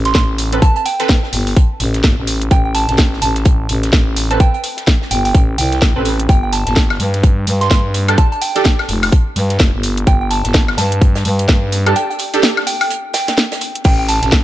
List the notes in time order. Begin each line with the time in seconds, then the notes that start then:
Already playing: A1
0.05 C6, snare, closed hi-hat
0.15 A1 C6, kick, snare, closed hi-hat
0.38 closed hi-hat, open hi-hat
0.53 C4 A4 B4, closed hi-hat
0.62 A5, kick, closed hi-hat
0.76 A5, closed hi-hat
0.85 G5, closed hi-hat, open hi-hat
1.00 C4 A4 B4, snare, closed hi-hat
1.09 kick, snare, closed hi-hat
1.23 snare
1.33 G1, closed hi-hat, open hi-hat
1.47 open hi-hat
1.56 kick, closed hi-hat
1.80 A1, closed hi-hat, open hi-hat
1.94 snare, closed hi-hat
2.03 G1, kick, snare, closed hi-hat
2.18 A1
2.27 closed hi-hat, open hi-hat
2.42 closed hi-hat
2.51 A1 G5, kick, closed hi-hat
2.65 G5
2.75 A5, closed hi-hat, open hi-hat
2.89 A1 A5, snare, closed hi-hat
2.98 kick, snare, closed hi-hat
3.13 snare
3.22 A1 A5, closed hi-hat, open hi-hat
3.36 snare, closed hi-hat
3.45 kick, closed hi-hat
3.69 A1, closed hi-hat, open hi-hat
3.83 snare, closed hi-hat
3.93 A1, kick, snare, closed hi-hat
4.16 closed hi-hat, open hi-hat
4.31 C4 A4 B4 A5, closed hi-hat
4.40 G5, kick, closed hi-hat
4.54 G5, closed hi-hat
4.63 closed hi-hat, open hi-hat
4.77 snare, closed hi-hat
4.87 kick, snare, closed hi-hat
5.02 snare
5.11 G1 G5, closed hi-hat, open hi-hat
5.25 G5, open hi-hat
5.35 A1, kick, closed hi-hat
5.58 C2 G5, closed hi-hat, open hi-hat
5.72 snare, closed hi-hat
5.82 kick, snare, closed hi-hat
5.96 A1 C4 A4 B4
6.05 closed hi-hat, open hi-hat
6.20 closed hi-hat
6.29 G1 G5, kick, closed hi-hat
6.43 G5
6.53 A5, closed hi-hat, open hi-hat
6.66 G1 A5, snare, closed hi-hat
6.76 kick, snare, closed hi-hat
6.90 snare, high woodblock
7.00 G2, closed hi-hat, open hi-hat
7.14 snare, closed hi-hat
7.23 kick, closed hi-hat
7.47 G2, closed hi-hat, open hi-hat
7.61 C6, snare, closed hi-hat
7.71 G2, kick, snare, closed hi-hat
7.94 closed hi-hat, open hi-hat
8.08 D4 G4 A4, closed hi-hat, high woodblock
8.18 A5, kick, closed hi-hat
8.32 A5, closed hi-hat
8.41 G5, closed hi-hat, open hi-hat
8.55 D4 G4 A4, snare, closed hi-hat
8.65 kick, snare, closed hi-hat
8.79 snare, high woodblock
8.88 F1, closed hi-hat, open hi-hat
9.03 open hi-hat, high woodblock
9.12 kick, closed hi-hat
9.36 G2, closed hi-hat, open hi-hat
9.49 snare, closed hi-hat
9.59 F1, kick, snare, closed hi-hat
9.74 G1
9.83 closed hi-hat, open hi-hat
9.97 closed hi-hat
10.07 G1 G5, kick, closed hi-hat
10.21 G5
10.31 A5, closed hi-hat, open hi-hat
10.44 G1 A5, snare, closed hi-hat
10.54 kick, snare, closed hi-hat
10.68 snare, high woodblock
10.77 G2 A5, snare, closed hi-hat, open hi-hat
10.92 closed hi-hat
11.01 kick, closed hi-hat
11.15 snare, closed hi-hat
11.25 G2, open hi-hat
11.39 closed hi-hat
11.48 G2, kick, snare, closed hi-hat
11.72 closed hi-hat, open hi-hat
11.86 D4 G4 A4 A5, closed hi-hat, high woodblock
11.96 G5, closed hi-hat
12.10 G5, closed hi-hat
12.19 closed hi-hat, open hi-hat
12.34 D4 G4 A4, snare, closed hi-hat
12.43 snare, closed hi-hat
12.57 snare, high woodblock
12.67 G5, closed hi-hat, open hi-hat
12.81 G5, open hi-hat, high woodblock
12.90 closed hi-hat
13.14 G5, snare, closed hi-hat, open hi-hat
13.28 snare, closed hi-hat
13.38 snare, closed hi-hat
13.52 snare, closed hi-hat
13.61 closed hi-hat, open hi-hat
13.75 closed hi-hat
13.84 A1 A3 C4 B4 G5, kick, closed hi-hat, crash
13.99 G5
14.09 A5, closed hi-hat, open hi-hat
14.22 A1 A5, snare, closed hi-hat
14.32 kick, snare, closed hi-hat